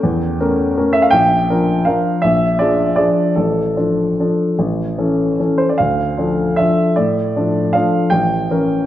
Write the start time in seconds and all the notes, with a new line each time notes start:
Already playing: G5
0.03 E2
0.40 A3 C#4 A#4
0.77 A3 C#4 A#4
0.93 E5
1.02 F5
1.10 A#1 G5
1.50 F3 D4 A#4
1.85 F3 D4 A#4 F5
2.22 A#1 E5
2.59 F3 D4 G#4 D5
2.96 F3 D4 G#4 D5
3.36 A1 A4
3.76 F3 D4 A4
4.20 F3 D4 A4
4.59 A1
4.98 E3 C#4 A4
5.39 E3 C#4 A4
5.58 C5
5.69 D5
5.78 D2 F5
6.17 F3 D4 A4
6.56 F3 D4 A4 E5
6.96 A2 D5
7.36 F3 D4 A4
7.73 F3 D4 A4 F5
8.10 A1 G5
8.50 E3 C#4 A#4